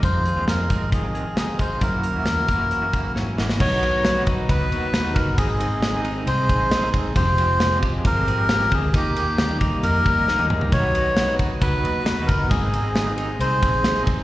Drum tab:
CC |----------------|----------------|x---------------|----------------|
RD |----------------|----------------|--x-x-x-x-x-x-x-|x-x-x-x-x-x-x-x-|
HH |x-x-x-x-x-x-x-x-|x-x-x-x-x-x-----|----------------|----------------|
SD |----o-------o---|----o-------o-oo|----o-------o---|----o-------o---|
T1 |----------------|----------------|----------------|----------------|
T2 |----------------|----------------|----------------|----------------|
FT |----------------|----------------|----------------|----------------|
BD |o-----o-o-----o-|o-----o---o-----|o-----o-o-----o-|o---------o---o-|

CC |----------------|----------------|----------------|----------------|
RD |x-x-x-x-x-x-x-x-|x-x-x-x-x-x-----|x-x-x-x-x-x-x-x-|x-x-x-x-x-x-x-x-|
HH |----------------|----------------|p---------------|----------------|
SD |----o-------o---|----o-------o---|----o-------o---|----o-------o---|
T1 |----------------|-------------o--|----------------|----------------|
T2 |----------------|--------------o-|----------------|----------------|
FT |----------------|---------------o|----------------|----------------|
BD |o-----o-o-----o-|o-----o---o-----|o-----o-o-----o-|o---------o---o-|